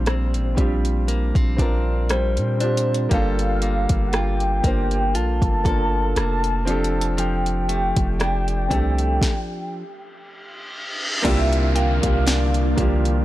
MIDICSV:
0, 0, Header, 1, 10, 480
1, 0, Start_track
1, 0, Tempo, 1016949
1, 1469, Time_signature, 4, 2, 24, 8
1, 6254, End_track
2, 0, Start_track
2, 0, Title_t, "Synth pluck"
2, 0, Program_c, 0, 84
2, 5548, Note_on_c, 0, 79, 81
2, 6206, Note_off_c, 0, 79, 0
2, 6254, End_track
3, 0, Start_track
3, 0, Title_t, "Soft synth lead"
3, 0, Program_c, 1, 80
3, 0, Note_on_c, 1, 72, 92
3, 255, Note_off_c, 1, 72, 0
3, 995, Note_on_c, 1, 72, 94
3, 1453, Note_off_c, 1, 72, 0
3, 1478, Note_on_c, 1, 77, 105
3, 1927, Note_on_c, 1, 78, 74
3, 1934, Note_off_c, 1, 77, 0
3, 1956, Note_on_c, 1, 79, 116
3, 1963, Note_off_c, 1, 78, 0
3, 2436, Note_on_c, 1, 81, 118
3, 2443, Note_off_c, 1, 79, 0
3, 3392, Note_off_c, 1, 81, 0
3, 3395, Note_on_c, 1, 79, 108
3, 5054, Note_off_c, 1, 79, 0
3, 5313, Note_on_c, 1, 76, 107
3, 5555, Note_on_c, 1, 77, 115
3, 5562, Note_off_c, 1, 76, 0
3, 6032, Note_off_c, 1, 77, 0
3, 6254, End_track
4, 0, Start_track
4, 0, Title_t, "Grand piano"
4, 0, Program_c, 2, 0
4, 0, Control_c, 2, 64, 127
4, 0, Note_on_c, 2, 60, 88
4, 0, Note_on_c, 2, 62, 85
4, 0, Note_on_c, 2, 65, 87
4, 0, Note_on_c, 2, 67, 101
4, 183, Note_off_c, 2, 60, 0
4, 187, Note_off_c, 2, 62, 0
4, 191, Note_off_c, 2, 65, 0
4, 195, Note_off_c, 2, 67, 0
4, 259, Note_on_c, 2, 60, 79
4, 268, Note_on_c, 2, 62, 70
4, 275, Note_on_c, 2, 65, 71
4, 282, Note_on_c, 2, 67, 86
4, 690, Note_off_c, 2, 60, 0
4, 694, Note_off_c, 2, 62, 0
4, 698, Note_off_c, 2, 65, 0
4, 702, Note_off_c, 2, 67, 0
4, 739, Note_on_c, 2, 60, 83
4, 748, Note_on_c, 2, 62, 73
4, 755, Note_on_c, 2, 65, 73
4, 762, Note_on_c, 2, 70, 95
4, 1170, Note_off_c, 2, 60, 0
4, 1174, Note_off_c, 2, 62, 0
4, 1178, Note_off_c, 2, 65, 0
4, 1182, Note_off_c, 2, 70, 0
4, 1219, Note_on_c, 2, 60, 66
4, 1227, Note_on_c, 2, 62, 63
4, 1235, Note_on_c, 2, 65, 63
4, 1243, Note_on_c, 2, 67, 74
4, 1437, Note_off_c, 2, 60, 0
4, 1441, Note_off_c, 2, 62, 0
4, 1445, Note_off_c, 2, 65, 0
4, 1449, Note_off_c, 2, 67, 0
4, 1459, Note_on_c, 2, 58, 94
4, 1468, Note_on_c, 2, 62, 86
4, 1475, Note_on_c, 2, 65, 82
4, 1476, Control_c, 2, 64, 0
4, 1483, Note_on_c, 2, 69, 109
4, 1571, Control_c, 2, 64, 127
4, 2103, Note_off_c, 2, 58, 0
4, 2107, Note_off_c, 2, 62, 0
4, 2111, Note_off_c, 2, 65, 0
4, 2115, Note_off_c, 2, 69, 0
4, 2180, Note_on_c, 2, 58, 63
4, 2187, Note_on_c, 2, 62, 60
4, 2196, Note_on_c, 2, 65, 57
4, 2204, Note_on_c, 2, 72, 72
4, 2610, Note_off_c, 2, 58, 0
4, 2614, Note_off_c, 2, 62, 0
4, 2619, Note_off_c, 2, 65, 0
4, 2622, Note_off_c, 2, 72, 0
4, 2660, Note_on_c, 2, 58, 70
4, 2668, Note_on_c, 2, 62, 66
4, 2676, Note_on_c, 2, 65, 66
4, 2684, Note_on_c, 2, 70, 77
4, 3140, Note_on_c, 2, 60, 91
4, 3142, Note_off_c, 2, 62, 0
4, 3145, Note_off_c, 2, 58, 0
4, 3149, Note_on_c, 2, 62, 83
4, 3153, Note_off_c, 2, 65, 0
4, 3155, Control_c, 2, 64, 0
4, 3156, Note_on_c, 2, 67, 86
4, 3157, Note_off_c, 2, 70, 0
4, 3163, Note_on_c, 2, 69, 101
4, 3228, Control_c, 2, 64, 127
4, 3996, Note_off_c, 2, 60, 0
4, 4001, Note_off_c, 2, 62, 0
4, 4004, Note_off_c, 2, 67, 0
4, 4008, Note_off_c, 2, 69, 0
4, 4100, Note_on_c, 2, 60, 74
4, 4107, Note_on_c, 2, 62, 72
4, 4114, Note_on_c, 2, 67, 68
4, 4123, Note_on_c, 2, 69, 86
4, 4344, Note_off_c, 2, 60, 0
4, 4348, Note_off_c, 2, 62, 0
4, 4352, Note_off_c, 2, 67, 0
4, 4356, Note_off_c, 2, 69, 0
4, 4356, Control_c, 2, 64, 0
4, 5297, Note_on_c, 2, 58, 98
4, 5305, Note_on_c, 2, 62, 95
4, 5313, Note_on_c, 2, 65, 89
4, 5321, Note_on_c, 2, 67, 110
4, 5385, Control_c, 2, 64, 127
4, 5625, Note_off_c, 2, 58, 0
4, 5629, Note_off_c, 2, 62, 0
4, 5633, Note_off_c, 2, 65, 0
4, 5637, Note_off_c, 2, 67, 0
4, 5668, Note_on_c, 2, 58, 67
4, 5676, Note_on_c, 2, 62, 59
4, 5683, Note_on_c, 2, 65, 61
4, 5691, Note_on_c, 2, 67, 73
4, 5983, Note_off_c, 2, 58, 0
4, 5987, Note_off_c, 2, 62, 0
4, 5991, Note_off_c, 2, 65, 0
4, 5995, Note_off_c, 2, 67, 0
4, 6020, Note_on_c, 2, 58, 74
4, 6027, Note_on_c, 2, 62, 68
4, 6035, Note_on_c, 2, 65, 66
4, 6043, Note_on_c, 2, 67, 84
4, 6254, Note_off_c, 2, 58, 0
4, 6254, Note_off_c, 2, 62, 0
4, 6254, Note_off_c, 2, 65, 0
4, 6254, Note_off_c, 2, 67, 0
4, 6254, End_track
5, 0, Start_track
5, 0, Title_t, "Ambient pad"
5, 0, Program_c, 3, 92
5, 5306, Note_on_c, 3, 58, 78
5, 5307, Note_on_c, 3, 50, 82
5, 5308, Note_on_c, 3, 65, 89
5, 6254, Note_off_c, 3, 50, 0
5, 6254, Note_off_c, 3, 58, 0
5, 6254, Note_off_c, 3, 65, 0
5, 6254, End_track
6, 0, Start_track
6, 0, Title_t, "Clean electric guitar"
6, 0, Program_c, 4, 27
6, 0, Note_on_c, 4, 46, 77
6, 0, Note_on_c, 4, 55, 58
6, 31, Note_on_c, 4, 60, 64
6, 268, Note_off_c, 4, 55, 0
6, 270, Note_on_c, 4, 55, 55
6, 509, Note_off_c, 4, 60, 0
6, 511, Note_on_c, 4, 58, 59
6, 641, Note_off_c, 4, 58, 0
6, 641, Note_on_c, 4, 60, 52
6, 751, Note_on_c, 4, 62, 60
6, 989, Note_off_c, 4, 55, 0
6, 991, Note_on_c, 4, 55, 62
6, 1228, Note_off_c, 4, 62, 0
6, 1230, Note_on_c, 4, 62, 64
6, 1468, Note_off_c, 4, 55, 0
6, 1470, Note_off_c, 4, 46, 0
6, 1470, Note_on_c, 4, 55, 78
6, 1522, Note_off_c, 4, 60, 0
6, 1710, Note_on_c, 4, 58, 57
6, 1947, Note_off_c, 4, 62, 0
6, 1949, Note_on_c, 4, 65, 63
6, 2184, Note_off_c, 4, 58, 0
6, 2190, Note_on_c, 4, 58, 58
6, 2428, Note_off_c, 4, 65, 0
6, 2430, Note_on_c, 4, 65, 64
6, 2669, Note_on_c, 4, 69, 64
6, 2903, Note_off_c, 4, 58, 0
6, 2909, Note_on_c, 4, 58, 57
6, 3146, Note_off_c, 4, 55, 0
6, 3148, Note_on_c, 4, 53, 76
6, 3201, Note_off_c, 4, 58, 0
6, 3386, Note_off_c, 4, 53, 0
6, 3388, Note_on_c, 4, 53, 80
6, 3629, Note_on_c, 4, 57, 57
6, 3866, Note_off_c, 4, 65, 0
6, 3868, Note_on_c, 4, 62, 65
6, 4103, Note_off_c, 4, 57, 0
6, 4108, Note_on_c, 4, 57, 55
6, 4321, Note_off_c, 4, 69, 0
6, 4401, Note_off_c, 4, 57, 0
6, 4637, Note_off_c, 4, 53, 0
6, 4637, Note_off_c, 4, 62, 0
6, 5308, Note_on_c, 4, 48, 81
6, 5310, Note_on_c, 4, 62, 70
6, 5547, Note_on_c, 4, 58, 61
6, 5786, Note_off_c, 4, 62, 0
6, 5788, Note_on_c, 4, 62, 73
6, 6029, Note_on_c, 4, 53, 60
6, 6254, Note_off_c, 4, 48, 0
6, 6254, Note_off_c, 4, 53, 0
6, 6254, Note_off_c, 4, 58, 0
6, 6254, Note_off_c, 4, 62, 0
6, 6254, End_track
7, 0, Start_track
7, 0, Title_t, "808-style bass"
7, 0, Program_c, 5, 38
7, 0, Note_on_c, 5, 34, 108
7, 162, Note_on_c, 5, 33, 95
7, 169, Note_off_c, 5, 34, 0
7, 265, Note_off_c, 5, 33, 0
7, 272, Note_on_c, 5, 34, 97
7, 625, Note_off_c, 5, 34, 0
7, 640, Note_on_c, 5, 34, 101
7, 1122, Note_on_c, 5, 46, 96
7, 1129, Note_off_c, 5, 34, 0
7, 1454, Note_off_c, 5, 46, 0
7, 1470, Note_on_c, 5, 31, 112
7, 1824, Note_off_c, 5, 31, 0
7, 1841, Note_on_c, 5, 31, 102
7, 2176, Note_off_c, 5, 31, 0
7, 2190, Note_on_c, 5, 31, 105
7, 2431, Note_on_c, 5, 34, 89
7, 2438, Note_off_c, 5, 31, 0
7, 2553, Note_off_c, 5, 34, 0
7, 2559, Note_on_c, 5, 31, 94
7, 2665, Note_off_c, 5, 31, 0
7, 2668, Note_on_c, 5, 31, 108
7, 2899, Note_off_c, 5, 31, 0
7, 2911, Note_on_c, 5, 29, 105
7, 3741, Note_off_c, 5, 29, 0
7, 3762, Note_on_c, 5, 29, 101
7, 4097, Note_off_c, 5, 29, 0
7, 4111, Note_on_c, 5, 36, 103
7, 4341, Note_off_c, 5, 36, 0
7, 5310, Note_on_c, 5, 36, 111
7, 5665, Note_off_c, 5, 36, 0
7, 5681, Note_on_c, 5, 36, 104
7, 6017, Note_off_c, 5, 36, 0
7, 6032, Note_on_c, 5, 36, 98
7, 6254, Note_off_c, 5, 36, 0
7, 6254, End_track
8, 0, Start_track
8, 0, Title_t, "Downlifter"
8, 0, Program_c, 6, 103
8, 5308, Note_on_c, 6, 60, 90
8, 6254, Note_off_c, 6, 60, 0
8, 6254, End_track
9, 0, Start_track
9, 0, Title_t, "Reverse cymbal"
9, 0, Program_c, 7, 119
9, 4348, Note_on_c, 7, 60, 76
9, 5309, Note_off_c, 7, 60, 0
9, 6254, End_track
10, 0, Start_track
10, 0, Title_t, "Drums"
10, 30, Note_on_c, 9, 42, 46
10, 34, Note_on_c, 9, 37, 108
10, 77, Note_off_c, 9, 42, 0
10, 81, Note_off_c, 9, 37, 0
10, 161, Note_on_c, 9, 42, 43
10, 209, Note_off_c, 9, 42, 0
10, 271, Note_on_c, 9, 36, 88
10, 273, Note_on_c, 9, 42, 62
10, 318, Note_off_c, 9, 36, 0
10, 320, Note_off_c, 9, 42, 0
10, 400, Note_on_c, 9, 42, 49
10, 448, Note_off_c, 9, 42, 0
10, 512, Note_on_c, 9, 42, 67
10, 559, Note_off_c, 9, 42, 0
10, 638, Note_on_c, 9, 36, 93
10, 641, Note_on_c, 9, 42, 45
10, 685, Note_off_c, 9, 36, 0
10, 688, Note_off_c, 9, 42, 0
10, 748, Note_on_c, 9, 36, 91
10, 751, Note_on_c, 9, 42, 58
10, 795, Note_off_c, 9, 36, 0
10, 798, Note_off_c, 9, 42, 0
10, 989, Note_on_c, 9, 42, 66
10, 993, Note_on_c, 9, 37, 96
10, 1036, Note_off_c, 9, 42, 0
10, 1041, Note_off_c, 9, 37, 0
10, 1118, Note_on_c, 9, 42, 48
10, 1166, Note_off_c, 9, 42, 0
10, 1229, Note_on_c, 9, 42, 60
10, 1277, Note_off_c, 9, 42, 0
10, 1309, Note_on_c, 9, 42, 63
10, 1356, Note_off_c, 9, 42, 0
10, 1390, Note_on_c, 9, 42, 58
10, 1437, Note_off_c, 9, 42, 0
10, 1468, Note_on_c, 9, 36, 104
10, 1468, Note_on_c, 9, 42, 64
10, 1515, Note_off_c, 9, 42, 0
10, 1516, Note_off_c, 9, 36, 0
10, 1600, Note_on_c, 9, 42, 49
10, 1647, Note_off_c, 9, 42, 0
10, 1708, Note_on_c, 9, 42, 62
10, 1755, Note_off_c, 9, 42, 0
10, 1838, Note_on_c, 9, 42, 74
10, 1839, Note_on_c, 9, 36, 101
10, 1885, Note_off_c, 9, 42, 0
10, 1886, Note_off_c, 9, 36, 0
10, 1949, Note_on_c, 9, 42, 46
10, 1953, Note_on_c, 9, 37, 102
10, 1996, Note_off_c, 9, 42, 0
10, 2000, Note_off_c, 9, 37, 0
10, 2079, Note_on_c, 9, 42, 43
10, 2126, Note_off_c, 9, 42, 0
10, 2189, Note_on_c, 9, 36, 90
10, 2190, Note_on_c, 9, 42, 66
10, 2236, Note_off_c, 9, 36, 0
10, 2237, Note_off_c, 9, 42, 0
10, 2318, Note_on_c, 9, 42, 47
10, 2365, Note_off_c, 9, 42, 0
10, 2431, Note_on_c, 9, 42, 69
10, 2478, Note_off_c, 9, 42, 0
10, 2557, Note_on_c, 9, 36, 92
10, 2560, Note_on_c, 9, 42, 45
10, 2604, Note_off_c, 9, 36, 0
10, 2607, Note_off_c, 9, 42, 0
10, 2667, Note_on_c, 9, 36, 88
10, 2670, Note_on_c, 9, 42, 57
10, 2714, Note_off_c, 9, 36, 0
10, 2717, Note_off_c, 9, 42, 0
10, 2909, Note_on_c, 9, 42, 64
10, 2914, Note_on_c, 9, 37, 96
10, 2956, Note_off_c, 9, 42, 0
10, 2961, Note_off_c, 9, 37, 0
10, 3039, Note_on_c, 9, 42, 50
10, 3086, Note_off_c, 9, 42, 0
10, 3151, Note_on_c, 9, 42, 60
10, 3198, Note_off_c, 9, 42, 0
10, 3230, Note_on_c, 9, 42, 63
10, 3277, Note_off_c, 9, 42, 0
10, 3311, Note_on_c, 9, 42, 62
10, 3358, Note_off_c, 9, 42, 0
10, 3390, Note_on_c, 9, 42, 66
10, 3437, Note_off_c, 9, 42, 0
10, 3522, Note_on_c, 9, 42, 49
10, 3569, Note_off_c, 9, 42, 0
10, 3631, Note_on_c, 9, 42, 65
10, 3678, Note_off_c, 9, 42, 0
10, 3759, Note_on_c, 9, 42, 76
10, 3760, Note_on_c, 9, 36, 99
10, 3807, Note_off_c, 9, 36, 0
10, 3807, Note_off_c, 9, 42, 0
10, 3870, Note_on_c, 9, 42, 47
10, 3874, Note_on_c, 9, 37, 107
10, 3917, Note_off_c, 9, 42, 0
10, 3922, Note_off_c, 9, 37, 0
10, 4002, Note_on_c, 9, 42, 42
10, 4049, Note_off_c, 9, 42, 0
10, 4110, Note_on_c, 9, 36, 93
10, 4112, Note_on_c, 9, 42, 65
10, 4157, Note_off_c, 9, 36, 0
10, 4159, Note_off_c, 9, 42, 0
10, 4241, Note_on_c, 9, 42, 48
10, 4288, Note_off_c, 9, 42, 0
10, 4350, Note_on_c, 9, 36, 107
10, 4355, Note_on_c, 9, 38, 89
10, 4397, Note_off_c, 9, 36, 0
10, 4402, Note_off_c, 9, 38, 0
10, 5309, Note_on_c, 9, 36, 112
10, 5309, Note_on_c, 9, 42, 71
10, 5309, Note_on_c, 9, 49, 101
10, 5356, Note_off_c, 9, 36, 0
10, 5356, Note_off_c, 9, 42, 0
10, 5357, Note_off_c, 9, 49, 0
10, 5440, Note_on_c, 9, 42, 51
10, 5487, Note_off_c, 9, 42, 0
10, 5549, Note_on_c, 9, 42, 71
10, 5596, Note_off_c, 9, 42, 0
10, 5679, Note_on_c, 9, 42, 78
10, 5680, Note_on_c, 9, 36, 101
10, 5726, Note_off_c, 9, 42, 0
10, 5727, Note_off_c, 9, 36, 0
10, 5790, Note_on_c, 9, 42, 51
10, 5794, Note_on_c, 9, 38, 113
10, 5837, Note_off_c, 9, 42, 0
10, 5841, Note_off_c, 9, 38, 0
10, 5921, Note_on_c, 9, 42, 48
10, 5968, Note_off_c, 9, 42, 0
10, 6030, Note_on_c, 9, 36, 98
10, 6031, Note_on_c, 9, 42, 68
10, 6077, Note_off_c, 9, 36, 0
10, 6078, Note_off_c, 9, 42, 0
10, 6161, Note_on_c, 9, 42, 49
10, 6208, Note_off_c, 9, 42, 0
10, 6254, End_track
0, 0, End_of_file